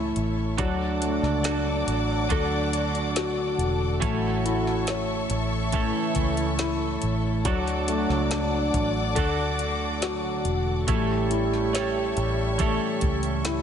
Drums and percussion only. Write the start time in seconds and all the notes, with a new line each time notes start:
0.16 closed hi-hat
0.58 kick, closed hi-hat
1.02 closed hi-hat
1.24 snare
1.44 snare, closed hi-hat
1.88 closed hi-hat
2.30 kick, closed hi-hat
2.73 closed hi-hat
2.95 closed hi-hat
3.16 snare, closed hi-hat
3.59 closed hi-hat
4.02 kick, closed hi-hat
4.46 closed hi-hat
4.67 snare
4.87 snare, closed hi-hat
5.30 closed hi-hat
5.72 kick, closed hi-hat
6.15 kick, closed hi-hat
6.37 closed hi-hat
6.59 snare, closed hi-hat
7.02 closed hi-hat
7.45 kick, closed hi-hat
7.67 closed hi-hat
7.88 closed hi-hat
8.10 snare
8.31 snare, closed hi-hat
8.74 kick, closed hi-hat
9.16 kick, closed hi-hat
9.59 closed hi-hat
10.02 snare, closed hi-hat
10.45 closed hi-hat
10.88 kick, closed hi-hat
11.31 closed hi-hat
11.54 snare
11.75 snare, closed hi-hat
12.17 closed hi-hat
12.59 kick, closed hi-hat
13.01 kick, closed hi-hat
13.23 closed hi-hat
13.45 snare, closed hi-hat